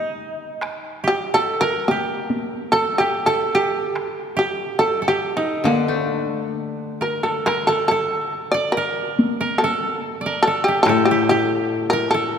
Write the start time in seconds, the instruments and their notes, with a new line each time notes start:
Already playing: koto G3 D#4, shamisen D#4
0.62 taiko rim
1.04 koto G4, shamisen G4
1.34 koto A4, shamisen A4
1.61 shamisen A#4, koto A#4
1.88 shamisen G4, koto G4, taiko high
2.30 taiko high
2.72 shamisen A4, koto A4
2.98 shamisen G4, koto G4
3.26 shamisen A4, koto A4
3.55 koto G4, shamisen G4
3.95 taiko rim
4.37 koto G4, shamisen G4
4.79 koto A4, shamisen A4
5.02 koto A4
5.08 shamisen G4, koto G4
5.37 shamisen D#4, koto D#4
5.64 koto D3 D4, shamisen A#3, taiko high
5.88 koto A3
6.08 shamisen D4
7.01 koto A#4, shamisen A#4
7.23 shamisen A4, koto A4
7.46 shamisen A#4, koto A#4, taiko rim
7.67 shamisen A4, koto A4
7.88 shamisen A4, koto A4
8.52 shamisen D5, koto D5
8.72 shamisen A#4
8.77 koto A#4
9.19 taiko high
9.41 koto A#4
9.58 shamisen A4
9.64 koto A4
10.21 koto D5
10.26 koto A#4
10.43 shamisen A4
10.47 koto A4
10.64 shamisen G4
10.68 koto G4
10.83 koto A2, shamisen A4, taiko rim
10.89 koto A4
11.05 shamisen G4
11.11 koto G4
11.29 shamisen G4, koto G4
11.90 shamisen A#4, koto A#4
12.11 shamisen A4, koto A4